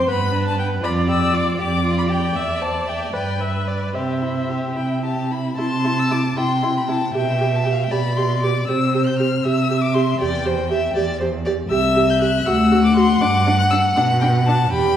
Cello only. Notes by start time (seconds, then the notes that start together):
0.07 G2
0.83 F2
1.59 F2
2.35 E2
3.14 G2
3.95 C3
4.77 C3
5.59 C3
6.37 C3
7.15 B2
7.91 B2
8.68 C3
9.44 C3
10.19 E2
10.95 E2
11.70 C2
12.45 D2
13.21 G2
13.97 B2
14.72 E2